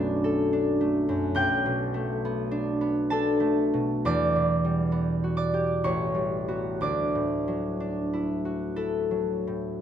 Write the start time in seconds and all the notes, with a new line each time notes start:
Already playing: B1 F#2 A3 B3 D4 A4 F#5 F#6
0.24 A4
0.53 D4
0.81 A3
1.09 F#2
1.35 B1 G5 G6
1.66 B2
1.94 A3
2.25 B3
2.51 D4
2.81 B3
3.10 D4 A4 A5
3.40 A3
3.74 B2
4.05 E2 D5 D6
4.36 B2
4.65 G3
4.92 B3
5.24 F#4
5.37 D5 D6
5.54 G4
5.84 A1 C#5 C#6
6.15 G3
6.48 B3 F#4
6.81 D2 D5 D6
7.15 A2
7.48 F#3
7.80 D4
8.13 E4
8.45 F#4
8.76 E4 A4
9.11 F#3
9.47 A2